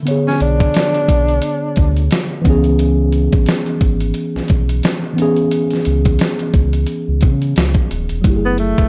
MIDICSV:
0, 0, Header, 1, 5, 480
1, 0, Start_track
1, 0, Tempo, 681818
1, 45, Time_signature, 4, 2, 24, 8
1, 6255, End_track
2, 0, Start_track
2, 0, Title_t, "Tine electric piano"
2, 0, Program_c, 0, 4
2, 0, Control_c, 0, 64, 127
2, 18, Note_on_c, 0, 50, 60
2, 38, Note_on_c, 0, 59, 58
2, 58, Note_on_c, 0, 73, 64
2, 77, Note_on_c, 0, 68, 67
2, 1684, Note_off_c, 0, 50, 0
2, 1693, Note_off_c, 0, 59, 0
2, 1700, Note_on_c, 0, 52, 79
2, 1703, Note_off_c, 0, 73, 0
2, 1713, Note_off_c, 0, 68, 0
2, 1718, Note_on_c, 0, 59, 72
2, 1734, Control_c, 0, 64, 0
2, 1738, Note_on_c, 0, 61, 73
2, 1758, Note_on_c, 0, 68, 89
2, 1872, Control_c, 0, 64, 127
2, 3604, Note_off_c, 0, 52, 0
2, 3613, Note_off_c, 0, 59, 0
2, 3615, Note_on_c, 0, 52, 70
2, 3623, Note_off_c, 0, 61, 0
2, 3633, Note_off_c, 0, 68, 0
2, 3635, Note_on_c, 0, 59, 70
2, 3655, Note_on_c, 0, 61, 68
2, 3674, Note_on_c, 0, 68, 96
2, 5522, Note_off_c, 0, 52, 0
2, 5532, Note_off_c, 0, 59, 0
2, 5542, Note_off_c, 0, 61, 0
2, 5552, Note_off_c, 0, 68, 0
2, 5783, Note_on_c, 0, 54, 57
2, 5803, Note_on_c, 0, 57, 52
2, 5815, Control_c, 0, 64, 0
2, 5822, Note_on_c, 0, 64, 47
2, 5842, Note_on_c, 0, 67, 52
2, 5876, Note_off_c, 0, 67, 0
2, 5888, Note_on_c, 0, 68, 63
2, 5918, Control_c, 0, 64, 127
2, 6255, Note_off_c, 0, 54, 0
2, 6255, Note_off_c, 0, 57, 0
2, 6255, Note_off_c, 0, 64, 0
2, 6255, Note_off_c, 0, 68, 0
2, 6255, End_track
3, 0, Start_track
3, 0, Title_t, "Tenor saxophone"
3, 0, Program_c, 1, 66
3, 193, Note_on_c, 1, 61, 79
3, 281, Note_off_c, 1, 61, 0
3, 294, Note_on_c, 1, 62, 85
3, 1461, Note_off_c, 1, 62, 0
3, 5951, Note_on_c, 1, 59, 74
3, 6040, Note_off_c, 1, 59, 0
3, 6051, Note_on_c, 1, 57, 87
3, 6255, Note_off_c, 1, 57, 0
3, 6255, End_track
4, 0, Start_track
4, 0, Title_t, "Sub bass"
4, 0, Program_c, 2, 38
4, 287, Note_on_c, 2, 35, 93
4, 510, Note_off_c, 2, 35, 0
4, 765, Note_on_c, 2, 35, 92
4, 989, Note_off_c, 2, 35, 0
4, 1249, Note_on_c, 2, 38, 89
4, 1471, Note_off_c, 2, 38, 0
4, 1727, Note_on_c, 2, 37, 80
4, 2315, Note_off_c, 2, 37, 0
4, 2343, Note_on_c, 2, 33, 89
4, 2439, Note_off_c, 2, 33, 0
4, 2683, Note_on_c, 2, 32, 83
4, 2908, Note_off_c, 2, 32, 0
4, 3065, Note_on_c, 2, 35, 50
4, 3106, Note_off_c, 2, 35, 0
4, 3169, Note_on_c, 2, 35, 97
4, 3391, Note_off_c, 2, 35, 0
4, 4130, Note_on_c, 2, 37, 100
4, 4351, Note_off_c, 2, 37, 0
4, 4604, Note_on_c, 2, 37, 95
4, 4828, Note_off_c, 2, 37, 0
4, 4985, Note_on_c, 2, 37, 83
4, 5088, Note_on_c, 2, 49, 102
4, 5098, Note_off_c, 2, 37, 0
4, 5310, Note_off_c, 2, 49, 0
4, 5328, Note_on_c, 2, 37, 103
4, 5455, Note_off_c, 2, 37, 0
4, 5569, Note_on_c, 2, 26, 80
4, 5695, Note_off_c, 2, 26, 0
4, 5705, Note_on_c, 2, 28, 100
4, 5799, Note_off_c, 2, 28, 0
4, 5804, Note_on_c, 2, 30, 88
4, 6156, Note_off_c, 2, 30, 0
4, 6184, Note_on_c, 2, 28, 79
4, 6255, Note_off_c, 2, 28, 0
4, 6255, End_track
5, 0, Start_track
5, 0, Title_t, "Drums"
5, 47, Note_on_c, 9, 42, 72
5, 117, Note_off_c, 9, 42, 0
5, 202, Note_on_c, 9, 38, 29
5, 272, Note_off_c, 9, 38, 0
5, 284, Note_on_c, 9, 42, 61
5, 355, Note_off_c, 9, 42, 0
5, 425, Note_on_c, 9, 36, 84
5, 427, Note_on_c, 9, 42, 36
5, 495, Note_off_c, 9, 36, 0
5, 498, Note_off_c, 9, 42, 0
5, 522, Note_on_c, 9, 42, 81
5, 539, Note_on_c, 9, 38, 115
5, 593, Note_off_c, 9, 42, 0
5, 609, Note_off_c, 9, 38, 0
5, 665, Note_on_c, 9, 42, 36
5, 735, Note_off_c, 9, 42, 0
5, 763, Note_on_c, 9, 36, 88
5, 766, Note_on_c, 9, 42, 68
5, 834, Note_off_c, 9, 36, 0
5, 836, Note_off_c, 9, 42, 0
5, 904, Note_on_c, 9, 42, 46
5, 975, Note_off_c, 9, 42, 0
5, 998, Note_on_c, 9, 42, 78
5, 1068, Note_off_c, 9, 42, 0
5, 1238, Note_on_c, 9, 42, 71
5, 1247, Note_on_c, 9, 36, 94
5, 1309, Note_off_c, 9, 42, 0
5, 1318, Note_off_c, 9, 36, 0
5, 1384, Note_on_c, 9, 42, 49
5, 1454, Note_off_c, 9, 42, 0
5, 1484, Note_on_c, 9, 42, 68
5, 1495, Note_on_c, 9, 38, 100
5, 1554, Note_off_c, 9, 42, 0
5, 1566, Note_off_c, 9, 38, 0
5, 1725, Note_on_c, 9, 36, 100
5, 1731, Note_on_c, 9, 42, 52
5, 1795, Note_off_c, 9, 36, 0
5, 1801, Note_off_c, 9, 42, 0
5, 1858, Note_on_c, 9, 42, 44
5, 1929, Note_off_c, 9, 42, 0
5, 1965, Note_on_c, 9, 42, 74
5, 2035, Note_off_c, 9, 42, 0
5, 2200, Note_on_c, 9, 42, 58
5, 2270, Note_off_c, 9, 42, 0
5, 2340, Note_on_c, 9, 42, 36
5, 2342, Note_on_c, 9, 36, 93
5, 2411, Note_off_c, 9, 42, 0
5, 2413, Note_off_c, 9, 36, 0
5, 2437, Note_on_c, 9, 42, 72
5, 2454, Note_on_c, 9, 38, 112
5, 2508, Note_off_c, 9, 42, 0
5, 2524, Note_off_c, 9, 38, 0
5, 2579, Note_on_c, 9, 42, 35
5, 2649, Note_off_c, 9, 42, 0
5, 2681, Note_on_c, 9, 36, 90
5, 2681, Note_on_c, 9, 42, 69
5, 2751, Note_off_c, 9, 42, 0
5, 2752, Note_off_c, 9, 36, 0
5, 2819, Note_on_c, 9, 42, 46
5, 2890, Note_off_c, 9, 42, 0
5, 2915, Note_on_c, 9, 42, 79
5, 2985, Note_off_c, 9, 42, 0
5, 3071, Note_on_c, 9, 38, 37
5, 3141, Note_off_c, 9, 38, 0
5, 3155, Note_on_c, 9, 42, 67
5, 3167, Note_on_c, 9, 36, 95
5, 3226, Note_off_c, 9, 42, 0
5, 3237, Note_off_c, 9, 36, 0
5, 3303, Note_on_c, 9, 42, 51
5, 3373, Note_off_c, 9, 42, 0
5, 3402, Note_on_c, 9, 42, 76
5, 3414, Note_on_c, 9, 38, 106
5, 3473, Note_off_c, 9, 42, 0
5, 3484, Note_off_c, 9, 38, 0
5, 3648, Note_on_c, 9, 42, 59
5, 3719, Note_off_c, 9, 42, 0
5, 3777, Note_on_c, 9, 42, 45
5, 3847, Note_off_c, 9, 42, 0
5, 3882, Note_on_c, 9, 42, 68
5, 3952, Note_off_c, 9, 42, 0
5, 4016, Note_on_c, 9, 42, 33
5, 4037, Note_on_c, 9, 38, 31
5, 4087, Note_off_c, 9, 42, 0
5, 4107, Note_off_c, 9, 38, 0
5, 4119, Note_on_c, 9, 42, 56
5, 4190, Note_off_c, 9, 42, 0
5, 4260, Note_on_c, 9, 42, 41
5, 4263, Note_on_c, 9, 36, 92
5, 4330, Note_off_c, 9, 42, 0
5, 4333, Note_off_c, 9, 36, 0
5, 4357, Note_on_c, 9, 42, 66
5, 4374, Note_on_c, 9, 38, 114
5, 4428, Note_off_c, 9, 42, 0
5, 4444, Note_off_c, 9, 38, 0
5, 4500, Note_on_c, 9, 42, 34
5, 4571, Note_off_c, 9, 42, 0
5, 4601, Note_on_c, 9, 42, 62
5, 4602, Note_on_c, 9, 36, 88
5, 4672, Note_off_c, 9, 42, 0
5, 4673, Note_off_c, 9, 36, 0
5, 4739, Note_on_c, 9, 42, 48
5, 4809, Note_off_c, 9, 42, 0
5, 4833, Note_on_c, 9, 42, 79
5, 4904, Note_off_c, 9, 42, 0
5, 5074, Note_on_c, 9, 42, 70
5, 5086, Note_on_c, 9, 36, 107
5, 5145, Note_off_c, 9, 42, 0
5, 5157, Note_off_c, 9, 36, 0
5, 5222, Note_on_c, 9, 42, 50
5, 5292, Note_off_c, 9, 42, 0
5, 5323, Note_on_c, 9, 42, 72
5, 5334, Note_on_c, 9, 38, 108
5, 5393, Note_off_c, 9, 42, 0
5, 5405, Note_off_c, 9, 38, 0
5, 5450, Note_on_c, 9, 42, 35
5, 5453, Note_on_c, 9, 36, 100
5, 5520, Note_off_c, 9, 42, 0
5, 5524, Note_off_c, 9, 36, 0
5, 5569, Note_on_c, 9, 42, 56
5, 5639, Note_off_c, 9, 42, 0
5, 5697, Note_on_c, 9, 42, 42
5, 5768, Note_off_c, 9, 42, 0
5, 5802, Note_on_c, 9, 42, 68
5, 5803, Note_on_c, 9, 36, 106
5, 5872, Note_off_c, 9, 42, 0
5, 5873, Note_off_c, 9, 36, 0
5, 6040, Note_on_c, 9, 42, 57
5, 6110, Note_off_c, 9, 42, 0
5, 6181, Note_on_c, 9, 42, 36
5, 6182, Note_on_c, 9, 36, 83
5, 6251, Note_off_c, 9, 42, 0
5, 6253, Note_off_c, 9, 36, 0
5, 6255, End_track
0, 0, End_of_file